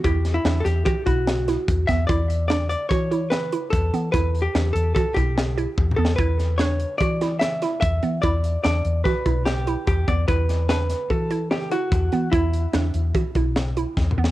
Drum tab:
HH |x--x--x--x--x--x--x--x--x--x--|x--x--x--x--x--x--x--x--x--x--|x--x--x--x--x--x--x--x--------|x--x--x--x--x--x--x--x--x--x--|
SD |---o--o--o--------o--o-----o--|------o-----o-----o-----------|------o-----------o---------o-|---o--o--------o--o--o--------|
T2 |------------------------------|------------------------------|--------------------------o---|------------------------------|
BD |o-----------o--o--------o--o--|o-----------o-----------o-----|o-----------o--o--------o-----|o-----------o-----------o-----|

HH |x--x--x--x--x--x--x--x--x--x--|x--x--x--x--x--x--x--x--x--x--|x--x--x--x--x--x--x--x--------|
SD |------o-----o-----o-----------|---o--o--o--------o-----------|------o-----------o-----o---o-|
T2 |------------------------------|------------------------------|--------------------------o---|
BD |o-----------o--o--------o--o--|o-----------o-----------o-----|o-----------o--o--------o-----|